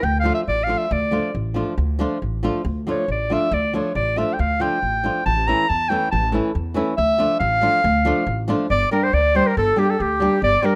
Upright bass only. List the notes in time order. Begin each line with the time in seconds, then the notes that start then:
0.03 D2
0.48 A1
0.91 D2
1.35 A1
1.78 D2
2.22 A1
2.65 D2
3.08 A1
3.51 D2
3.95 A1
4.39 D2
4.82 A1
5.26 A1
5.70 E2
6.13 A1
6.55 E2
6.98 D2
7.40 A1
7.84 D2
8.27 A1
8.70 G1
9.13 D2
9.57 G1
10.00 D2
10.42 G1